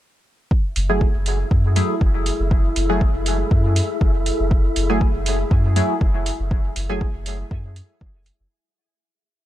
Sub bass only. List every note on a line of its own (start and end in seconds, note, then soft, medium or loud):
0.76 1.06 F#1 loud
1.15 1.44 F#1 medium
1.51 1.81 F#2 loud
2.01 2.31 F#1 medium
2.40 2.69 F#1 loud
2.76 3.06 F#1 loud
3.15 3.44 F#1 medium
3.51 3.81 F#2 loud
4.01 4.31 F#1 medium
4.40 4.69 F#1 loud
4.76 5.06 F#1 loud
5.15 5.44 F#1 medium
5.51 5.81 F#2 loud
6.01 6.31 F#1 medium
6.40 6.69 F#1 loud
6.76 7.06 F#1 loud
7.15 7.44 F#1 loud
7.51 7.81 F#2 loud
8.01 8.31 F#1 medium
8.40 8.47 F#1 loud